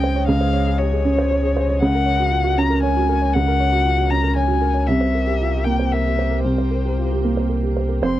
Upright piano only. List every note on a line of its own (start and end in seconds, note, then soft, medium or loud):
0.00 0.23 C#2 medium
0.00 0.30 C#4 medium
0.00 0.29 G4 soft
0.00 0.30 G#4 medium
0.00 0.04 C5 medium
0.00 0.23 C5 medium
0.00 0.15 C#5 medium
0.15 0.35 C#5 medium
0.28 1.78 C#2 medium
0.41 0.61 C5 medium
0.53 0.73 C#5 medium
0.67 0.86 G#4 medium
0.79 0.91 G4 soft
0.92 1.12 G#4 medium
1.04 1.25 C#4 medium
1.18 1.38 C5 medium
1.31 1.51 C#5 medium
1.43 1.63 G#4 medium
1.57 1.77 C5 medium
1.69 1.82 C#5 medium
1.82 3.30 C#2 medium
1.95 2.15 A#4 medium
2.06 2.26 C#5 medium
2.20 2.40 F#4 soft
2.31 2.44 F4 medium
2.44 2.65 F#4 medium
2.57 2.78 C#4 medium
2.70 2.90 A#4 medium
2.83 3.03 C#5 medium
2.96 3.16 F#4 medium
3.09 3.29 A#4 medium
3.22 3.42 C#5 medium
3.36 4.84 C#2 medium
3.48 3.68 A#4 medium
3.60 3.80 C#5 medium
3.72 3.92 F#4 medium
3.85 3.98 F4 soft
3.97 4.18 F#4 soft
4.11 4.31 C#4 medium
4.23 4.44 A#4 medium
4.36 4.56 C#5 medium
4.48 4.69 F#4 soft
4.61 4.82 A#4 medium
4.74 4.87 C#5 soft
4.88 6.40 C2 medium
5.01 5.21 C5 medium
5.15 5.34 A#4 soft
5.27 5.47 G4 medium
5.41 5.53 F4 soft
5.54 5.73 G4 soft
5.66 5.86 A#3 medium
5.79 5.99 C5 medium
5.94 6.13 A#4 soft
6.05 6.26 G4 soft
6.19 6.39 C5 soft
6.31 6.52 A#4 soft
6.44 7.99 C2 medium
6.58 6.79 C5 soft
6.71 6.92 A#4 soft
6.85 7.06 G4 soft
6.99 7.11 F4 soft
7.12 7.32 G4 soft
7.24 7.45 A#3 soft
7.37 7.58 C5 soft
7.50 7.71 A#4 soft
7.63 7.84 G4 soft
7.77 7.97 C5 soft
7.89 8.02 A#4 soft
8.02 8.20 F2 medium
8.02 8.20 C5 medium